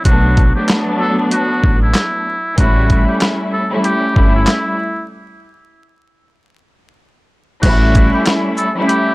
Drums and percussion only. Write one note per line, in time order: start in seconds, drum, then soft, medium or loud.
0.05 kick loud
0.05 closed hi-hat loud
0.37 kick medium
0.37 closed hi-hat soft
0.68 snare loud
0.68 clap medium
0.68 closed hi-hat medium
1.31 closed hi-hat medium
1.64 kick loud
1.94 snare loud
1.94 clap loud
1.94 closed hi-hat medium
2.58 kick loud
2.58 closed hi-hat loud
2.90 kick medium
2.90 closed hi-hat soft
3.20 snare loud
3.20 clap medium
3.20 closed hi-hat medium
3.84 closed hi-hat medium
4.16 kick loud
4.47 snare loud
4.47 clap loud
4.47 closed hi-hat medium
7.63 kick loud
7.63 closed hi-hat loud
7.63 crash loud
7.95 kick medium
7.95 closed hi-hat soft
7.95 shaker soft
8.26 snare loud
8.26 clap loud
8.26 closed hi-hat medium
8.57 shaker medium
8.89 closed hi-hat loud